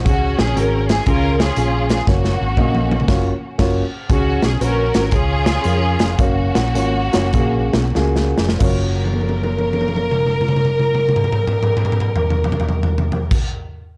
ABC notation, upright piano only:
X:1
M:4/4
L:1/8
Q:"Swing" 1/4=109
K:F#
V:1 name="Upright piano"
[CFG] z [CFG] z [CEG] z [CEG] z | [A,CFce] z [A,CFde] z [A,CEFc] z [A,CEFc] z | [CFG] z [CFB] [CFA] [CEG] z [CEA] z | [A,CFce] z [A,CEFc] [A,CEFc] [A,CFGe] z [A,CEFG] z |
[A,EFc]8- | [A,EFc]6 z2 |]
V:2 name="Upright piano" clef=bass
C,3 z C,3 z | z8 | C,3 z C,3 z | z8 |
F,,8- | F,,6 z2 |]